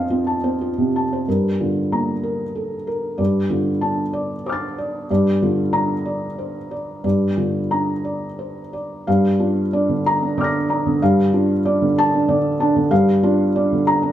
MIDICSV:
0, 0, Header, 1, 2, 480
1, 0, Start_track
1, 0, Key_signature, -2, "minor"
1, 0, Tempo, 657895
1, 920, Time_signature, 3, 2, 24, 8
1, 1391, Tempo, 637620
1, 4751, Tempo, 669643
1, 7151, Tempo, 638978
1, 10458, End_track
2, 0, Start_track
2, 0, Title_t, "Felt piano"
2, 0, Program_c, 0, 0
2, 0, Control_c, 0, 64, 127
2, 0, Note_on_c, 0, 41, 65
2, 0, Note_on_c, 0, 60, 46
2, 0, Note_on_c, 0, 65, 51
2, 0, Note_on_c, 0, 72, 50
2, 0, Note_on_c, 0, 77, 58
2, 0, Note_on_c, 0, 81, 62
2, 74, Note_off_c, 0, 60, 0
2, 74, Note_on_c, 0, 60, 45
2, 75, Note_off_c, 0, 65, 0
2, 75, Note_on_c, 0, 65, 48
2, 148, Note_off_c, 0, 77, 0
2, 196, Note_off_c, 0, 81, 0
2, 196, Note_on_c, 0, 81, 55
2, 269, Note_off_c, 0, 60, 0
2, 269, Note_off_c, 0, 65, 0
2, 318, Note_on_c, 0, 60, 49
2, 320, Note_off_c, 0, 72, 0
2, 320, Note_on_c, 0, 72, 57
2, 389, Note_off_c, 0, 81, 0
2, 446, Note_on_c, 0, 65, 55
2, 511, Note_off_c, 0, 60, 0
2, 512, Note_off_c, 0, 72, 0
2, 570, Note_on_c, 0, 48, 48
2, 635, Note_off_c, 0, 65, 0
2, 700, Note_on_c, 0, 81, 52
2, 758, Note_off_c, 0, 48, 0
2, 823, Note_on_c, 0, 72, 49
2, 883, Note_off_c, 0, 81, 0
2, 894, Note_off_c, 0, 41, 0
2, 931, Note_off_c, 0, 72, 0
2, 936, Control_c, 0, 64, 0
2, 936, Note_on_c, 0, 70, 44
2, 937, Note_on_c, 0, 43, 48
2, 1069, Control_c, 0, 64, 127
2, 1169, Note_on_c, 0, 65, 43
2, 1174, Note_on_c, 0, 50, 38
2, 1305, Note_off_c, 0, 70, 0
2, 1403, Note_on_c, 0, 58, 38
2, 1404, Note_on_c, 0, 82, 50
2, 1542, Note_off_c, 0, 65, 0
2, 1545, Note_off_c, 0, 50, 0
2, 1637, Note_on_c, 0, 70, 43
2, 1784, Note_off_c, 0, 58, 0
2, 1784, Note_off_c, 0, 82, 0
2, 1878, Note_on_c, 0, 69, 37
2, 2022, Note_off_c, 0, 70, 0
2, 2117, Note_on_c, 0, 70, 43
2, 2118, Note_off_c, 0, 69, 0
2, 2336, Note_off_c, 0, 43, 0
2, 2348, Note_on_c, 0, 74, 52
2, 2353, Note_on_c, 0, 43, 57
2, 2358, Note_off_c, 0, 70, 0
2, 2372, Control_c, 0, 64, 0
2, 2500, Control_c, 0, 64, 127
2, 2590, Note_on_c, 0, 50, 42
2, 2593, Note_on_c, 0, 65, 50
2, 2733, Note_off_c, 0, 74, 0
2, 2826, Note_on_c, 0, 81, 61
2, 2832, Note_on_c, 0, 62, 48
2, 2973, Note_off_c, 0, 50, 0
2, 2974, Note_off_c, 0, 65, 0
2, 3067, Note_on_c, 0, 74, 55
2, 3212, Note_off_c, 0, 81, 0
2, 3215, Note_off_c, 0, 62, 0
2, 3315, Note_on_c, 0, 72, 47
2, 3317, Note_on_c, 0, 86, 36
2, 3337, Note_on_c, 0, 89, 37
2, 3362, Note_on_c, 0, 93, 38
2, 3453, Note_off_c, 0, 74, 0
2, 3553, Note_off_c, 0, 72, 0
2, 3556, Note_on_c, 0, 74, 50
2, 3756, Note_off_c, 0, 43, 0
2, 3762, Note_off_c, 0, 86, 0
2, 3772, Note_off_c, 0, 89, 0
2, 3784, Note_off_c, 0, 93, 0
2, 3792, Note_off_c, 0, 74, 0
2, 3799, Note_on_c, 0, 43, 67
2, 3802, Control_c, 0, 64, 0
2, 3803, Note_on_c, 0, 74, 59
2, 3908, Control_c, 0, 64, 127
2, 4038, Note_on_c, 0, 50, 49
2, 4041, Note_on_c, 0, 65, 53
2, 4177, Note_off_c, 0, 74, 0
2, 4267, Note_on_c, 0, 62, 47
2, 4268, Note_on_c, 0, 82, 70
2, 4416, Note_off_c, 0, 50, 0
2, 4418, Note_off_c, 0, 65, 0
2, 4513, Note_on_c, 0, 74, 50
2, 4654, Note_off_c, 0, 62, 0
2, 4655, Note_off_c, 0, 82, 0
2, 4761, Note_on_c, 0, 72, 40
2, 4896, Note_off_c, 0, 74, 0
2, 4993, Note_off_c, 0, 72, 0
2, 4996, Note_on_c, 0, 74, 46
2, 5205, Note_off_c, 0, 43, 0
2, 5220, Note_off_c, 0, 74, 0
2, 5231, Note_on_c, 0, 74, 51
2, 5232, Note_on_c, 0, 43, 57
2, 5244, Control_c, 0, 64, 0
2, 5386, Control_c, 0, 64, 127
2, 5469, Note_on_c, 0, 65, 44
2, 5471, Note_on_c, 0, 50, 41
2, 5617, Note_off_c, 0, 74, 0
2, 5709, Note_on_c, 0, 62, 39
2, 5712, Note_on_c, 0, 82, 61
2, 5857, Note_off_c, 0, 65, 0
2, 5858, Note_off_c, 0, 50, 0
2, 5952, Note_on_c, 0, 74, 44
2, 6100, Note_off_c, 0, 62, 0
2, 6101, Note_off_c, 0, 82, 0
2, 6198, Note_on_c, 0, 72, 33
2, 6343, Note_off_c, 0, 74, 0
2, 6442, Note_off_c, 0, 72, 0
2, 6443, Note_on_c, 0, 74, 44
2, 6657, Note_off_c, 0, 43, 0
2, 6684, Note_off_c, 0, 74, 0
2, 6689, Note_on_c, 0, 77, 63
2, 6693, Note_on_c, 0, 43, 69
2, 6697, Control_c, 0, 64, 0
2, 6800, Control_c, 0, 64, 127
2, 6919, Note_on_c, 0, 65, 57
2, 6921, Note_on_c, 0, 62, 55
2, 7061, Note_off_c, 0, 77, 0
2, 7106, Note_off_c, 0, 62, 0
2, 7160, Note_on_c, 0, 74, 58
2, 7162, Note_on_c, 0, 62, 52
2, 7282, Note_on_c, 0, 50, 46
2, 7297, Note_off_c, 0, 65, 0
2, 7350, Note_off_c, 0, 62, 0
2, 7411, Note_on_c, 0, 82, 78
2, 7471, Note_off_c, 0, 50, 0
2, 7532, Note_on_c, 0, 62, 50
2, 7544, Note_off_c, 0, 74, 0
2, 7644, Note_on_c, 0, 74, 53
2, 7645, Note_on_c, 0, 50, 51
2, 7648, Note_on_c, 0, 86, 40
2, 7669, Note_on_c, 0, 89, 41
2, 7694, Note_on_c, 0, 94, 43
2, 7717, Note_off_c, 0, 62, 0
2, 7789, Note_off_c, 0, 82, 0
2, 7833, Note_off_c, 0, 50, 0
2, 7887, Note_on_c, 0, 82, 60
2, 7891, Note_on_c, 0, 62, 51
2, 8013, Note_on_c, 0, 50, 54
2, 8025, Note_off_c, 0, 74, 0
2, 8075, Note_off_c, 0, 62, 0
2, 8091, Note_off_c, 0, 43, 0
2, 8092, Note_off_c, 0, 86, 0
2, 8103, Note_off_c, 0, 89, 0
2, 8115, Note_off_c, 0, 94, 0
2, 8122, Note_off_c, 0, 82, 0
2, 8125, Note_off_c, 0, 50, 0
2, 8128, Control_c, 0, 64, 0
2, 8131, Note_on_c, 0, 77, 71
2, 8132, Note_on_c, 0, 43, 75
2, 8250, Control_c, 0, 64, 127
2, 8363, Note_on_c, 0, 65, 58
2, 8368, Note_on_c, 0, 62, 58
2, 8508, Note_off_c, 0, 77, 0
2, 8554, Note_off_c, 0, 62, 0
2, 8605, Note_on_c, 0, 62, 62
2, 8605, Note_on_c, 0, 74, 67
2, 8729, Note_on_c, 0, 50, 54
2, 8741, Note_off_c, 0, 65, 0
2, 8790, Note_off_c, 0, 62, 0
2, 8854, Note_on_c, 0, 81, 91
2, 8911, Note_off_c, 0, 50, 0
2, 8971, Note_on_c, 0, 62, 62
2, 8980, Note_off_c, 0, 74, 0
2, 9079, Note_on_c, 0, 50, 66
2, 9080, Note_on_c, 0, 74, 66
2, 9152, Note_off_c, 0, 62, 0
2, 9224, Note_off_c, 0, 81, 0
2, 9265, Note_off_c, 0, 50, 0
2, 9316, Note_on_c, 0, 62, 67
2, 9319, Note_on_c, 0, 81, 62
2, 9438, Note_on_c, 0, 50, 64
2, 9456, Note_off_c, 0, 74, 0
2, 9502, Note_off_c, 0, 62, 0
2, 9524, Note_off_c, 0, 43, 0
2, 9548, Note_on_c, 0, 43, 76
2, 9548, Note_on_c, 0, 77, 82
2, 9552, Note_off_c, 0, 50, 0
2, 9552, Note_off_c, 0, 81, 0
2, 9560, Control_c, 0, 64, 0
2, 9665, Control_c, 0, 64, 127
2, 9790, Note_on_c, 0, 65, 67
2, 9792, Note_on_c, 0, 62, 70
2, 9928, Note_off_c, 0, 77, 0
2, 9979, Note_off_c, 0, 62, 0
2, 10034, Note_on_c, 0, 62, 60
2, 10034, Note_on_c, 0, 74, 68
2, 10161, Note_on_c, 0, 50, 52
2, 10171, Note_off_c, 0, 65, 0
2, 10222, Note_off_c, 0, 62, 0
2, 10271, Note_on_c, 0, 82, 85
2, 10347, Note_off_c, 0, 50, 0
2, 10388, Note_on_c, 0, 62, 57
2, 10418, Note_off_c, 0, 74, 0
2, 10458, Note_off_c, 0, 43, 0
2, 10458, Note_off_c, 0, 62, 0
2, 10458, Note_off_c, 0, 82, 0
2, 10458, End_track
0, 0, End_of_file